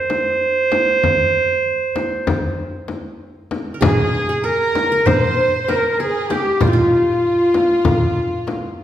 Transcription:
0.00 0.32 A#4 medium
0.00 3.16 C5 medium
0.00 3.16 C5 loud
0.10 frame drum medium
0.72 frame drum medium
1.03 frame drum medium
1.96 frame drum medium
2.27 frame drum medium
2.88 frame drum medium
3.51 frame drum medium
3.74 4.43 A#4 soft
3.81 4.29 G#4 medium
3.81 4.39 G#4 medium
3.81 darbuka dum medium
3.81 frame drum loud
3.85 4.46 G#4 medium
4.13 darbuka ka soft
4.29 5.51 G#4 medium
4.44 4.91 A#4 medium
4.44 5.02 A#4 medium
4.44 5.08 A#4 medium
4.75 darbuka tek medium
4.75 frame drum medium
4.92 5.68 A#4 medium
5.06 6.11 C5 medium
5.06 5.68 C5 medium
5.06 5.62 C5 loud
5.06 darbuka dum medium
5.06 frame drum medium
5.62 5.71 C5 medium
5.66 5.91 A#4 medium
5.66 6.82 A#4 medium
5.66 6.02 A#4 medium
5.66 darbuka tek medium
5.66 frame drum medium
5.93 5.99 A#4 medium
5.99 6.30 G#4 medium
5.99 6.36 G#4 medium
5.99 6.24 G#4 medium
5.99 darbuka ka soft
6.24 6.34 G#4 medium
6.29 6.61 G4 medium
6.29 7.56 G4 medium
6.29 6.65 G4 medium
6.29 darbuka tek medium
6.29 frame drum medium
6.60 8.84 F4 medium
6.60 6.73 F4 medium
6.60 8.84 F4 medium
6.60 frame drum medium
6.60 darbuka dum medium
6.67 8.12 D#4 medium
6.73 8.84 F4 medium
6.93 darbuka ka soft
7.54 darbuka tek medium
7.54 frame drum medium
7.85 frame drum medium
7.85 darbuka dum medium
8.47 darbuka tek medium
8.47 frame drum medium
8.78 darbuka ka soft

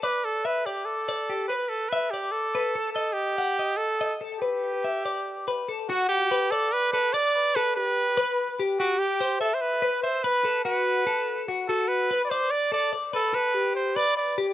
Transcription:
0.03 0.26 B4 loud
0.03 0.45 D5 medium
0.25 0.47 A4 loud
0.45 0.67 B4 loud
0.45 0.66 E5 medium
0.66 0.87 G4 medium
0.66 1.07 D5 medium
0.85 1.47 A4 loud
1.09 1.30 D5 medium
1.30 1.50 G4 medium
1.48 1.70 B4 medium
1.48 1.92 B4 medium
1.69 1.91 A4 medium
1.89 2.12 B4 medium
1.89 2.13 E5 medium
2.11 2.33 G4 medium
2.11 2.55 D5 medium
2.31 2.92 A4 loud
2.55 2.75 B4 medium
2.75 2.96 A4 medium
2.93 3.15 A4 medium
2.93 3.38 D#5 medium
3.13 3.79 G4 loud
3.38 3.59 F#5 medium
3.59 4.00 D#5 medium
3.77 4.14 A4 loud
4.01 4.22 D#5 medium
4.21 4.41 A4 medium
4.40 5.62 G4 medium
4.40 4.84 B4 medium
4.84 5.05 E5 medium
5.05 5.47 D5 medium
5.48 5.68 B4 medium
5.69 5.89 A4 medium
5.88 6.07 F#4 loud
5.88 6.30 F#4 loud
6.09 6.53 G4 loud
6.31 6.51 B4 loud
6.51 6.74 A4 loud
6.51 6.93 D5 medium
6.73 6.92 B4 loud
6.93 7.13 A4 medium
6.93 7.15 B4 loud
7.13 7.57 D5 loud
7.13 7.35 D5 medium
7.35 7.55 B4 medium
7.56 7.77 A4 medium
7.56 7.75 B4 loud
7.76 8.17 G4 medium
7.76 8.54 B4 loud
8.17 8.58 B4 loud
8.60 8.79 G4 medium
8.79 9.00 F#4 loud
8.79 9.21 G4 loud
8.99 9.40 G4 loud
9.21 9.40 C5 medium
9.41 9.56 A4 loud
9.41 9.82 E5 medium
9.54 9.63 C5 medium
9.61 10.02 B4 loud
9.82 10.03 B4 medium
10.03 10.25 C5 loud
10.03 10.24 E5 medium
10.23 10.64 B4 loud
10.23 10.45 B4 medium
10.45 10.65 A4 medium
10.64 11.06 F#4 medium
10.64 11.43 B4 loud
11.07 11.48 A4 medium
11.48 11.68 F#4 medium
11.68 12.10 F#4 medium
11.68 11.90 A4 loud
11.88 12.24 B4 loud
12.11 12.31 B4 medium
12.25 12.31 D5 medium
12.30 12.52 C5 loud
12.30 12.72 D5 medium
12.51 12.72 D5 loud
12.72 12.92 A4 medium
12.72 12.92 D5 loud
12.93 13.13 D5 medium
13.13 13.36 A4 loud
13.13 13.34 B4 loud
13.34 13.54 A4 medium
13.34 13.75 B4 loud
13.54 13.96 G4 loud
13.75 13.98 C5 loud
13.96 14.38 B4 medium
13.96 14.16 D5 loud
14.17 14.36 D5 medium
14.38 14.53 G4 medium

